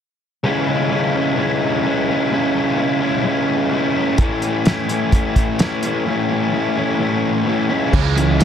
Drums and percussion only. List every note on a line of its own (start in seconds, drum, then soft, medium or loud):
4.18 kick loud
4.18 closed hi-hat medium
4.42 closed hi-hat soft
4.66 snare medium
4.66 closed hi-hat medium
4.89 closed hi-hat medium
5.12 kick medium
5.12 closed hi-hat medium
5.36 kick medium
5.36 closed hi-hat medium
5.59 snare loud
5.59 closed hi-hat medium
5.83 closed hi-hat medium
7.93 kick loud
7.93 crash medium
8.18 closed hi-hat medium
8.40 closed hi-hat medium